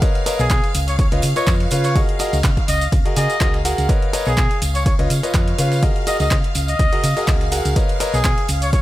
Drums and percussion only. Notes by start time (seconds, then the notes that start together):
0.02 kick, closed hi-hat, tambourine, shaker
0.15 closed hi-hat
0.26 open hi-hat, tambourine, shaker
0.39 tambourine, shaker
0.50 kick, snare, clap, closed hi-hat, tambourine, shaker
0.64 closed hi-hat
0.74 closed hi-hat, open hi-hat, tambourine, shaker
0.88 closed hi-hat, tambourine, shaker
0.99 kick, closed hi-hat, tambourine, shaker
1.12 closed hi-hat
1.22 closed hi-hat, open hi-hat, tambourine, shaker
1.36 closed hi-hat, tambourine, shaker
1.47 kick, snare, clap, closed hi-hat, tambourine, shaker
1.60 closed hi-hat
1.71 closed hi-hat, open hi-hat, tambourine, shaker
1.84 snare, closed hi-hat, tambourine, shaker
1.96 kick, closed hi-hat, tambourine, shaker
2.09 closed hi-hat
2.19 closed hi-hat, open hi-hat, tambourine, shaker
2.33 closed hi-hat, tambourine, shaker
2.44 kick, snare, clap, closed hi-hat, tambourine, shaker
2.57 kick, closed hi-hat
2.68 closed hi-hat, open hi-hat, tambourine, shaker
2.81 closed hi-hat, tambourine, shaker
2.92 kick, closed hi-hat, tambourine, shaker
3.05 closed hi-hat
3.16 snare, closed hi-hat, open hi-hat, tambourine, shaker
3.30 closed hi-hat, tambourine, shaker
3.41 kick, snare, clap, closed hi-hat, shaker
3.54 snare, closed hi-hat
3.65 closed hi-hat, open hi-hat, tambourine, shaker
3.78 closed hi-hat, tambourine, shaker
3.89 kick, closed hi-hat, tambourine, shaker
4.02 closed hi-hat
4.13 open hi-hat, tambourine, shaker
4.25 tambourine, shaker
4.37 kick, snare, clap, closed hi-hat, shaker
4.51 closed hi-hat
4.62 closed hi-hat, open hi-hat, tambourine, shaker
4.75 closed hi-hat, tambourine, shaker
4.86 kick, closed hi-hat, tambourine, shaker
4.99 closed hi-hat
5.10 closed hi-hat, open hi-hat, tambourine, shaker
5.23 closed hi-hat, tambourine, shaker
5.34 kick, snare, clap, closed hi-hat, shaker
5.47 closed hi-hat
5.58 closed hi-hat, open hi-hat, tambourine, shaker
5.72 snare, closed hi-hat, tambourine, shaker
5.83 kick, closed hi-hat, shaker
5.96 closed hi-hat
6.07 closed hi-hat, open hi-hat, tambourine, shaker
6.20 closed hi-hat, tambourine, shaker
6.31 kick, snare, clap, closed hi-hat, shaker
6.44 closed hi-hat
6.55 closed hi-hat, open hi-hat, tambourine, shaker
6.68 closed hi-hat, tambourine, shaker
6.79 kick, closed hi-hat, tambourine, shaker
6.93 closed hi-hat
7.04 snare, closed hi-hat, open hi-hat, tambourine, shaker
7.17 closed hi-hat, tambourine, shaker
7.28 kick, snare, clap, closed hi-hat, shaker
7.41 snare, closed hi-hat
7.52 closed hi-hat, open hi-hat, tambourine, shaker
7.65 closed hi-hat, tambourine, shaker
7.76 kick, closed hi-hat, tambourine, shaker
7.89 closed hi-hat
8.00 open hi-hat, tambourine, shaker
8.14 tambourine, shaker
8.24 kick, snare, clap, closed hi-hat, shaker
8.38 closed hi-hat
8.48 closed hi-hat, open hi-hat, tambourine, shaker
8.62 closed hi-hat, tambourine, shaker
8.73 kick, closed hi-hat, tambourine, shaker